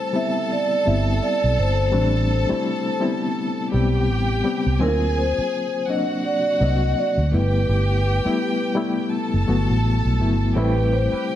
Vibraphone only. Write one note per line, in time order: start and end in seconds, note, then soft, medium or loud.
0.00 0.17 C5 medium
0.16 0.52 E5 medium
0.52 0.88 D5 medium
0.87 1.23 E5 medium
1.23 1.59 D5 medium
1.59 2.98 C5 medium
4.82 5.18 A#4 medium
5.18 5.91 C5 medium
5.89 6.05 D#5 medium
6.25 6.62 D5 medium
6.62 6.98 D#5 medium
6.98 7.14 D5 medium
7.34 8.73 B4 medium
10.58 10.94 B4 medium
10.93 11.36 C5 medium